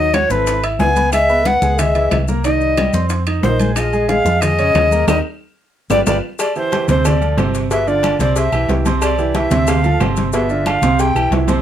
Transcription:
Already playing: fingered electric bass D#2, trombone F#3, recorder D#5
0.13 grand piano F#3 F#4 F#5, trombone F#3, recorder C#5, high bongo, high conga, high timbale, low timbale, claves, maracas
0.30 fingered electric bass G#1, trombone E3, grand piano C4 A4, recorder B4, high bongo, high conga, maracas
0.47 high bongo, high conga, high timbale, maracas
0.63 grand piano E4 E5 E6, high bongo, high conga, high timbale, claves, maracas
0.79 fingered electric bass C#2, trombone B3, recorder G#5, high bongo, low bongo, high conga, low timbale, maracas
0.96 grand piano B3 B4 B5, high conga, high timbale, maracas
1.12 trombone G#3, grand piano G#3 G#4 G#5, recorder E5, high bongo, high conga, high timbale, claves, maracas
1.29 grand piano B3 B4 B5, high conga, maracas
1.45 trombone B3, recorder F#5, high bongo, high conga, high timbale, low timbale, maracas
1.62 fingered electric bass C#2, grand piano G#3 G#4 G#5, high conga, maracas
1.79 trombone G#3, recorder E5, high bongo, high conga, low conga, high timbale, claves, maracas
1.95 grand piano E3 E4 E5, high conga, high timbale, maracas
2.11 fingered electric bass C2, high bongo, low bongo, high conga, high timbale, low timbale, claves, maracas
2.28 grand piano A#3 A#4 A#5, high conga, maracas
2.44 grand piano D#3 D#4 D#5, trombone G3, recorder D#5, high bongo, high conga, high timbale, maracas
2.61 high bongo, high conga, maracas
2.77 grand piano G3 G4 G5, high bongo, high conga, high timbale, low timbale, claves, maracas
2.93 fingered electric bass F2, grand piano C4 C5 C6, high conga, maracas
3.10 high bongo, high timbale, maracas
3.27 grand piano D#4 D#5 D#6, high bongo, high conga, high timbale, claves, maracas
3.42 fingered electric bass A#1, trombone D#3, recorder C5, high bongo, low bongo, high conga, low timbale, maracas
3.60 grand piano G#3 G#4 G#5, high conga, high timbale, maracas
3.75 grand piano F3 F4 F5, trombone G#3, recorder D#5, high bongo, high conga, high timbale, claves, maracas
3.93 grand piano G#3 G#4 G#5, high conga, maracas
4.07 trombone G#3, recorder F5, high bongo, high conga, high timbale, low timbale, maracas
4.25 fingered electric bass F2, grand piano F3 F4 F5, high conga, maracas
4.41 trombone G#3, recorder D#5, high bongo, high conga, low conga, high timbale, claves, maracas
4.59 grand piano C#3 C#4 C#5, high conga, high timbale, maracas
4.74 fingered electric bass D#2, high bongo, low bongo, high conga, high timbale, low timbale, claves, maracas
4.91 grand piano A#3 A#4 A#5, high conga, maracas
5.07 fingered electric bass D#2, trombone G3, grand piano D#4 G4 A#4, recorder D#5, low bongo, high conga, high timbale, claves, maracas
5.90 fingered electric bass G1, trombone G3, grand piano F4 G4 B4, recorder D5, low bongo, high conga, high timbale, claves, maracas
6.06 fingered electric bass G1, trombone G3, grand piano F4 G4 B4, recorder D5, low bongo, high conga, high timbale, claves, maracas
6.39 recorder D5, cowbell, high conga, low agogo, claves, maracas
6.56 grand piano E3 E4 G4, recorder C5, high conga, maracas
6.72 grand piano E3 E4 G4, cowbell, high conga, low timbale, low agogo, maracas
6.88 fingered electric bass D2, grand piano C3 C4 C5, recorder C5, cowbell, high conga, maracas
7.05 recorder D5, cowbell, high conga, low conga, low agogo, claves, maracas
7.21 grand piano F3 F4 A4, high conga, low agogo, maracas
7.37 fingered electric bass G1, grand piano C3 C4 C5, cowbell, high conga, low timbale, low agogo, claves, maracas
7.55 cowbell, maracas
7.71 grand piano B2 B3 B4, recorder E5, cowbell, high conga, low agogo, maracas
7.87 grand piano D3 D4 F4, recorder D5, high conga, maracas
8.03 cowbell, high conga, low timbale, low agogo, claves, maracas
8.19 fingered electric bass C2, grand piano C3 C4 C5, recorder D5, cowbell, high conga, maracas
8.36 recorder E5, cowbell, high conga, low agogo, maracas
8.52 fingered electric bass B1, grand piano E3 E4 G4, high conga, low agogo, claves, maracas
8.68 fingered electric bass C2, grand piano E3 E4 G4, cowbell, high conga, low timbale, maracas
8.86 grand piano C3 C4 C5, cowbell, high conga, low agogo, maracas
9.02 recorder D5, cowbell, low agogo, claves, maracas
9.18 grand piano E3 E4 G4, high conga, maracas
9.35 grand piano E3 E4 G4, recorder E5, cowbell, high conga, low timbale, low agogo, maracas
9.51 fingered electric bass D2, grand piano C3 C4 C5, cowbell, high conga, maracas
9.67 recorder F5, cowbell, high conga, low conga, low agogo, claves, maracas
9.84 grand piano F3 F4 A4, high conga, low conga, low agogo, maracas
10.00 fingered electric bass G1, grand piano C3 C4 C5, cowbell, high conga, low timbale, low agogo, claves, maracas
10.17 cowbell, high conga, maracas
10.33 grand piano B2 B3 B4, recorder E5, cowbell, low agogo, maracas
10.49 grand piano D3 D4 F4, high conga, maracas
10.66 recorder F5, cowbell, high conga, low timbale, low agogo, claves, maracas
10.82 fingered electric bass C2, grand piano C3 C4 C5, cowbell, high conga, maracas
10.99 recorder G5, cowbell, high conga, low agogo, maracas
11.15 fingered electric bass B1, grand piano E3 E4 G4, high conga, low agogo, claves, maracas
11.31 fingered electric bass C2, grand piano E3 E4 G4, cowbell, high conga, low timbale, maracas
11.48 grand piano C3 C4 C5, cowbell, high conga, low agogo, maracas

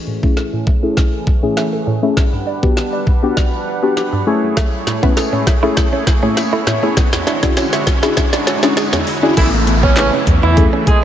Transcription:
Already playing: supersaw synth E3 A3 C#4 G#4, riser
0.07 synth arpeggio sound A2
0.23 synth pluck A3 C#4 E4 G#4, synth arpeggio sound E5, kick
0.37 synth arpeggio sound A4, snare
0.53 synth arpeggio sound A2
0.67 synth arpeggio sound E5, kick
0.83 synth pluck A3 C#4 E4 G#4, synth arpeggio sound A4
0.97 kick, snare
1.27 kick
1.43 synth arpeggio sound A2, synth pluck A3 C#4 E4 G#4
1.57 synth arpeggio sound E5, snare
1.73 synth arpeggio sound A4
1.87 synth arpeggio sound A2
2.03 synth pluck A3 C#4 E4 G#4
2.17 supersaw synth G3 D4 B4 F#5, kick, snare
2.33 synth arpeggio sound G2
2.47 synth arpeggio sound D5
2.63 synth pluck B3 D4 F#4 G4, kick
2.77 snare
2.93 synth arpeggio sound D5
3.07 kick
3.23 synth pluck B3 D4 F#4 G4
3.37 synth arpeggio sound D5, kick, snare
3.82 synth pluck B3 D4 F#4 G4
3.97 synth arpeggio sound G4, snare
4.13 synth arpeggio sound G2
4.27 synth pluck A3 C#4 E4 G#4, supersaw synth A3 E4 G#4 C#5
4.57 clean electric guitar A3, synth arpeggio sound E5, kick, snare, closed hi-hat
4.87 synth arpeggio sound A2, muted clean electric guitar stroke, snare, closed hi-hat
5.03 synth pluck A3 C#4 E4 B4, clean electric guitar B3, synth arpeggio sound E5, kick
5.17 synth arpeggio sound A4, snare, closed hi-hat, tambourine
5.33 synth arpeggio sound A2, clean electric guitar C#4
5.47 synth arpeggio sound E5, muted clean electric guitar stroke, kick, snare, closed hi-hat
5.62 synth pluck A3 C#4 E4 G#4, clean electric guitar E4, synth arpeggio sound A4
5.77 kick, snare, closed hi-hat
5.93 clean electric guitar C#4
6.07 muted clean electric guitar stroke, kick, snare, closed hi-hat
6.23 synth arpeggio sound A2, synth pluck A3 C#4 E4 G#4, clean electric guitar C#4
6.37 synth arpeggio sound E5, snare, closed hi-hat, tambourine
6.53 clean electric guitar E4, synth arpeggio sound A4
6.67 synth arpeggio sound A2, muted clean electric guitar stroke, snare, closed hi-hat
6.83 synth pluck A3 C#4 E4 G#4, clean electric guitar C#4
6.97 supersaw synth D3 G#3 F#4, kick, snare, closed hi-hat
7.13 synth arpeggio sound E2, muted clean electric guitar stroke, snare
7.27 clean electric guitar D4, synth arpeggio sound E5, snare, closed hi-hat
7.43 synth pluck C#4 D4 E4 F#4 G#4, clean electric guitar D4, kick, snare
7.57 clean electric guitar C#4, snare, closed hi-hat, tambourine
7.73 synth arpeggio sound E5, snare
7.87 muted clean electric guitar stroke, kick, snare, closed hi-hat
8.03 synth pluck C#4 D4 E4 F#4 G#4, clean electric guitar E4, snare
8.17 synth arpeggio sound E5, muted clean electric guitar stroke, kick, snare, closed hi-hat
8.33 clean electric guitar D4, snare
8.47 clean electric guitar C#4, snare, closed hi-hat
8.63 synth pluck C#4 D4 E4 F#4 G#4, snare
8.77 synth arpeggio sound G#4, snare, closed hi-hat, tambourine
8.93 synth arpeggio sound E2, clean electric guitar C#4, snare
9.07 muted clean electric guitar stroke, open hi-hat
9.23 synth pluck C#4 D4 E4 F#4 G#4, clean electric guitar D4
9.37 analog synth bass A1, supersaw synth C#3 E3 A3, horn section E3 E4, synth pluck A3 C#4 E4 G#4 A4, clean electric guitar A3, kick, closed hi-hat, crash, downlifter
9.67 muted clean electric guitar stroke, closed hi-hat
9.83 clean electric guitar B3, horn section C#4 C#5, kick
9.96 synth pluck A3 C#4 E4 G#4 B4, horn section C#4 C#5, snare, clap, closed hi-hat, tambourine
10.13 clean electric guitar C#4
10.27 analog synth bass E2, muted clean electric guitar stroke, kick, closed hi-hat
10.43 analog synth bass E2, horn section E3 E4, clean electric guitar E4
10.57 synth pluck A3 C#4 E4 G#4 A4, kick, closed hi-hat
10.73 clean electric guitar C#4
10.87 horn section G#3 G#4, muted clean electric guitar stroke, kick, closed hi-hat

